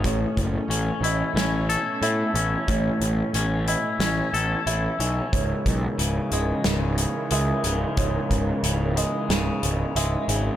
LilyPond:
<<
  \new Staff \with { instrumentName = "Felt piano" } { \time 4/4 \key cis \minor \tempo 4 = 91 cis''4 r8 dis''4 r8 e''4 | cis''4 r8 dis''4 r8 e''4 | cis''4 r8 dis''4 r8 e''4 | cis''4 r8 dis''4 r8 e''4 | }
  \new Staff \with { instrumentName = "Clean electric guitar" } { \clef bass \time 4/4 \key cis \minor a,4 cis'8 e'8 cis'8 a'8 e'8 cis'8 | a,4 cis'8 e'8 cis'8 a'8 e'8 cis'8 | cis,4 cis8 gis8 cis4 gis8 cis8 | cis,4 cis8 gis8 cis4 gis8 cis8 | }
  \new Staff \with { instrumentName = "String section" } { \clef bass \time 4/4 \key cis \minor <b, a cis'>1~ | <b, a cis'>1 | <cis dis e>1~ | <cis dis e>1 | }
  \new Staff \with { instrumentName = "Picked electric bass" } { \clef bass \time 4/4 \key cis \minor a,,8 fis,,8 a,,8 a,,8 a,,4 a,8 a,,8 | a,,8 a,,8 a,,4 a,,8 a,,8 a,,8 b,,8 | cis,,8 b,,8 cis,,8 cis,,8 cis,,4 cis,8 cis,,8 | cis,,8 cis,,8 cis,,4 cis,,8 cis,,8 cis,,8 gis,,8 | }
  \new DrumStaff \with { instrumentName = "Drums" } \drummode { \time 4/4 <hh bd>8 <hh bd>8 hh8 hh8 <hh sn>8 hh8 hh8 hh8 | <hh bd>8 hh8 hh8 hh8 <hh sn>8 hh8 hh8 hh8 | <hh bd>8 <hh bd>8 hh8 hh8 <hh sn>8 hh8 hh8 hh8 | <hh bd>8 <hh bd>8 hh8 hh8 <hh sn>8 hh8 hh8 hh8 | }
>>